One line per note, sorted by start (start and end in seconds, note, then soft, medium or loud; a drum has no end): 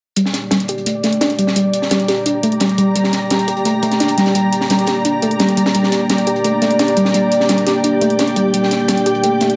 0.16 0.27 G3 medium
0.16 9.56 A#3 medium
0.16 9.56 D4 medium
0.16 9.56 G4 medium
0.16 2.95 D5 medium
0.16 closed hi-hat medium
0.26 snare soft
0.30 9.56 D5 medium
0.30 snare soft
0.34 closed hi-hat medium
0.51 0.57 G3 medium
0.51 snare loud
0.51 closed hi-hat medium
0.60 closed hi-hat soft
0.68 0.79 G4 loud
0.68 closed hi-hat medium
0.78 closed hi-hat soft
0.86 1.01 A3 medium
0.86 closed hi-hat medium
1.03 1.19 A3 loud
1.03 snare soft
1.03 closed hi-hat medium
1.12 closed hi-hat soft
1.21 1.31 D4 loud
1.21 snare loud
1.21 closed hi-hat medium
1.30 closed hi-hat soft
1.39 1.49 G3 medium
1.39 closed hi-hat medium
1.47 snare medium
1.54 1.66 G3 medium
1.54 7.14 A#5 medium
1.54 closed hi-hat medium
1.74 closed hi-hat medium
1.82 snare medium
1.91 2.01 G3 medium
1.91 snare loud
1.91 closed hi-hat medium
2.00 closed hi-hat soft
2.08 2.18 G4 loud
2.08 snare soft
2.08 closed hi-hat medium
2.26 2.32 D4 medium
2.26 closed hi-hat medium
2.43 2.58 A3 loud
2.43 closed hi-hat medium
2.52 closed hi-hat soft
2.60 2.67 G3 loud
2.60 snare loud
2.60 closed hi-hat medium
2.69 closed hi-hat soft
2.78 2.88 G3 loud
2.78 closed hi-hat medium
2.96 3.06 G3 medium
2.96 5.74 G5 medium
2.96 closed hi-hat medium
3.04 snare soft
3.12 snare soft
3.12 closed hi-hat medium
3.30 3.36 G3 medium
3.30 snare loud
3.30 closed hi-hat medium
3.39 closed hi-hat soft
3.48 3.58 G4 loud
3.48 closed hi-hat medium
3.57 closed hi-hat soft
3.65 3.80 A3 medium
3.65 closed hi-hat medium
3.82 3.98 A3 loud
3.82 closed hi-hat medium
3.91 snare soft
3.91 closed hi-hat soft
4.00 4.10 D4 medium
4.00 snare soft
4.00 closed hi-hat medium
4.08 closed hi-hat medium
4.08 closed hi-hat soft
4.18 4.28 G3 loud
4.18 snare soft
4.18 closed hi-hat medium
4.26 snare soft
4.26 closed hi-hat medium
4.35 4.45 G3 medium
4.35 closed hi-hat medium
4.53 closed hi-hat medium
4.61 snare soft
4.70 4.80 G3 medium
4.70 snare loud
4.70 closed hi-hat medium
4.79 closed hi-hat soft
4.87 4.97 G4 loud
4.87 snare medium
4.87 closed hi-hat medium
5.05 5.11 D4 medium
5.05 closed hi-hat medium
5.22 5.37 A3 loud
5.22 closed hi-hat medium
5.31 closed hi-hat soft
5.39 5.46 G3 loud
5.39 snare loud
5.39 closed hi-hat medium
5.49 closed hi-hat soft
5.57 5.67 G3 loud
5.57 closed hi-hat medium
5.66 snare loud
5.66 closed hi-hat medium
5.74 5.85 G3 medium
5.74 8.53 D5 medium
5.74 closed hi-hat medium
5.83 snare soft
5.92 snare soft
5.92 closed hi-hat medium
6.10 6.16 G3 medium
6.10 snare loud
6.10 closed hi-hat medium
6.18 closed hi-hat soft
6.27 6.37 G4 loud
6.27 closed hi-hat medium
6.36 closed hi-hat soft
6.44 6.59 A3 medium
6.44 closed hi-hat medium
6.62 6.77 A3 loud
6.62 snare soft
6.62 closed hi-hat medium
6.71 closed hi-hat soft
6.79 6.89 D4 loud
6.79 snare loud
6.79 closed hi-hat medium
6.88 closed hi-hat soft
6.96 7.07 G3 loud
6.96 closed hi-hat medium
7.05 snare medium
7.12 7.24 G3 medium
7.12 9.56 G5 medium
7.12 closed hi-hat medium
7.32 closed hi-hat medium
7.40 snare medium
7.49 7.59 G3 medium
7.49 snare loud
7.49 closed hi-hat medium
7.58 closed hi-hat soft
7.67 7.76 G4 loud
7.67 snare medium
7.67 closed hi-hat medium
7.84 7.90 D4 medium
7.84 closed hi-hat medium
8.01 8.16 A3 loud
8.01 closed hi-hat medium
8.10 closed hi-hat soft
8.19 8.29 D4 medium
8.19 snare loud
8.19 closed hi-hat medium
8.28 closed hi-hat soft
8.36 8.46 G3 loud
8.36 closed hi-hat medium
8.54 8.64 G3 medium
8.54 9.56 G5 medium
8.54 closed hi-hat medium
8.63 snare soft
8.71 snare soft
8.71 closed hi-hat medium
8.88 8.95 G3 medium
8.88 snare loud
8.88 closed hi-hat medium
8.97 closed hi-hat soft
9.06 9.16 G4 loud
9.06 closed hi-hat medium
9.15 closed hi-hat soft
9.24 9.38 A3 medium
9.24 closed hi-hat medium
9.40 9.56 A3 loud
9.40 snare soft
9.40 closed hi-hat medium
9.50 closed hi-hat soft